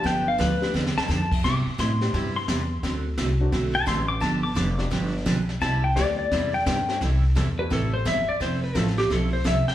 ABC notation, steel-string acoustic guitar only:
X:1
M:4/4
L:1/16
Q:"Swing" 1/4=172
K:C
V:1 name="Steel-string acoustic guitar"
[D,F,B,DG]2 z2 [D,F,B,DG] z3 [D,F,B,DG]2 z2 [D,F,B,DG] z3 | [C,G,B,EG]2 z2 [C,G,B,EG] z3 [C,G,B,EG]2 z2 [C,G,B,EG] z3 | [D,A,C^FA]2 z2 [D,A,CFA] z3 [D,A,CFA]2 z2 [D,A,CFA] z3 | [D,F,B,DG]2 z2 [D,F,B,DG] z3 [D,F,B,DG]2 z2 [D,F,B,DG] z3 |
[C,G,B,EG]2 z2 [C,G,B,EG] z3 [C,G,B,EG]2 z2 [C,G,B,EG] z3 | [C,E,G,CEA]2 z2 [C,E,G,CEA] z3 [C,E,G,CEA]2 z2 [C,E,G,CEA] z3 | [F,CEA]2 z2 [F,CEA] z3 [F,CEA]2 z2 [F,CEA] z3 |]